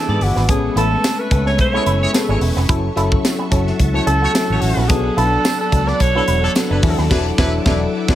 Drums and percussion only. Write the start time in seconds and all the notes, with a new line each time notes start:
0.21 open hi-hat
0.37 snare
0.49 kick, closed hi-hat
0.77 closed hi-hat
1.04 snare, closed hi-hat, tambourine
1.31 kick, closed hi-hat
1.46 snare
1.58 kick, closed hi-hat
1.86 closed hi-hat
2.14 snare, closed hi-hat, tambourine
2.41 open hi-hat
2.57 snare
2.69 kick, closed hi-hat
2.97 closed hi-hat
3.12 kick
3.25 snare, closed hi-hat, tambourine
3.52 kick, closed hi-hat
3.67 snare
3.79 kick, closed hi-hat
4.07 closed hi-hat
4.35 snare, closed hi-hat, tambourine
4.62 open hi-hat
4.89 kick, closed hi-hat
5.18 closed hi-hat
5.45 snare, closed hi-hat, tambourine
5.72 kick, closed hi-hat
5.88 snare
6.00 kick, closed hi-hat
6.28 closed hi-hat
6.55 snare, closed hi-hat, tambourine
6.83 kick, open hi-hat
6.98 snare
7.11 kick, snare, crash
7.38 kick, snare
7.66 kick, snare
8.08 kick, snare